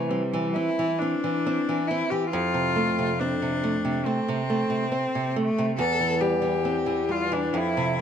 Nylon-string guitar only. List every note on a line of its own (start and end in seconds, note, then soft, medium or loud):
0.00 0.50 C3 medium
0.00 0.22 E3 soft
0.11 0.46 C4 medium
0.33 0.69 E3 medium
0.56 0.91 C4 medium
0.79 1.14 E3 medium
1.02 1.36 C4 medium
1.24 1.58 E3 soft
1.46 1.80 C4 medium
1.69 2.02 E3 medium
1.91 2.24 C4 medium
2.12 2.32 E3 medium
2.33 4.03 F2 medium
2.54 2.89 C3 medium
2.76 3.11 A3 medium
2.99 3.33 C3 medium
3.21 3.55 C4 medium
3.42 3.76 C3 soft
3.64 3.97 A3 medium
3.85 4.19 C3 medium
4.06 4.40 A3 medium
4.28 4.62 C3 medium
4.50 4.84 A3 medium
4.70 5.05 C3 medium
4.92 5.27 C4 medium
5.15 5.49 C3 medium
5.36 5.70 A3 medium
5.58 5.78 C3 medium
5.79 7.50 E2 medium
6.00 6.33 E3 medium
6.21 6.55 G3 medium
6.42 6.77 E3 medium
6.65 7.00 C4 medium
6.86 7.22 E3 medium
7.09 7.45 G3 medium
7.32 7.54 E3 medium
7.54 8.01 F2 medium
7.77 8.01 C3 medium